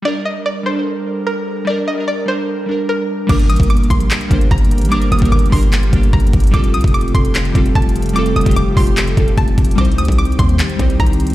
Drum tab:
CC |------------------------------------------------------------------------------------------------|------------------------------------------------------------------------------------------------|x-----------------------------------------------------------------------------------------------|------------------------------------------------------------------------------------------------|
HH |------------------------------------------------------------------------------------------------|------------------------------------------------------------------------------------------------|x-----x-----x---x---x---x---x---x---x-----x-----x-----x-----x-----x-----x---x---x---x---x-x-x---|x-----x-----x---x---x---x---x---x---o-----x-----x-----x-----x-----x-----x---x---x---x---x-x-x---|
CP |------------------------------------------------------------------------------------------------|------------------------------------------------------------------------------------------------|------------------------------------------------x-----------------------------------------------|------------------------------------------------x-----------------------------------------------|
BD |------------------------------------------------------------------------------------------------|------------------------------------------------------------------------------------------------|o-----------------o-----------------o-----------------------o-----------o-----------------------|------------------o-----------------o-----------------------o-----------o-----------o-----------|

CC |------------------------------------------------------------------------------------------------|------------------------------------------------------------------------------------------------|------------------------------------------------------------------------------------------------|
HH |x-----x-----x---x---x---x---x---x---x-----x-----x-----x-----x-----x-----x---x---x---x---x-x-x---|x-----x-----x--x--x--x--x-----------o-----x-----x-----x-----x-----x-----x-----x-----x---x---x---|x---x---x---x---x---x---x---x---x---x-----x-----x-----x-----x-----x-----x---x---x---x---x-x-----|
CP |------------------------------------------------x-----------------------------------------------|------------------------------------------------x-----------------------------------------------|------------------------------------------------x-----------------------------------------------|
BD |o-----------------o-----------------o-----------------------o-----------o-----------------------|------------------o-----------------o-----------------------o-----------o-----------o-----------|o-----------------o-----------------o-----------------------o-----------o-----------------------|